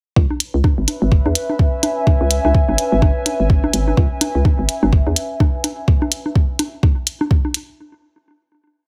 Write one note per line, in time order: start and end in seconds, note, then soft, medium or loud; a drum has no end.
0.16 0.28 C#2 loud
0.16 5.88 C#4 medium
0.16 kick loud
0.29 5.88 B4 medium
0.29 low bongo soft
0.40 closed hi-hat medium
0.54 0.62 C#2 medium
0.60 5.88 E5 medium
0.60 kick loud
0.60 low bongo medium
0.78 0.86 G#1 medium
0.88 closed hi-hat medium
0.88 low bongo soft
1.02 1.21 G#1 loud
1.12 kick loud
1.26 1.34 E2 medium
1.26 low bongo medium
1.31 5.88 G#5 medium
1.35 closed hi-hat medium
1.49 low bongo soft
1.59 kick loud
1.83 closed hi-hat medium
1.83 low bongo medium
2.07 kick loud
2.07 low bongo soft
2.21 2.40 C#2 loud
2.31 closed hi-hat loud
2.45 2.53 C#2 medium
2.45 low bongo medium
2.55 kick loud
2.69 2.77 G#1 medium
2.69 low bongo soft
2.78 closed hi-hat medium
2.92 3.11 G#1 loud
3.02 kick loud
3.02 low bongo medium
3.26 closed hi-hat medium
3.26 low bongo soft
3.40 3.71 G#1 medium
3.50 kick loud
3.64 low bongo medium
3.74 3.94 G#1 loud
3.74 closed hi-hat medium
3.88 low bongo soft
3.97 4.09 C#2 loud
3.97 kick loud
4.21 closed hi-hat loud
4.21 low bongo medium
4.35 4.43 C#2 medium
4.45 kick loud
4.45 low bongo soft
4.59 4.67 G#1 medium
4.69 closed hi-hat medium
4.83 5.02 G#1 loud
4.83 low bongo medium
4.93 kick loud
5.07 5.15 E2 medium
5.07 low bongo soft
5.16 closed hi-hat medium
5.40 kick loud
5.40 low bongo medium
5.64 closed hi-hat medium
5.64 low bongo soft
5.88 kick loud
6.02 low bongo medium
6.12 closed hi-hat loud
6.26 low bongo soft
6.35 kick loud
6.59 closed hi-hat loud
6.59 low bongo medium
6.83 kick loud
6.83 low bongo soft
7.07 closed hi-hat medium
7.21 low bongo medium
7.31 kick loud
7.45 low bongo soft
7.54 closed hi-hat medium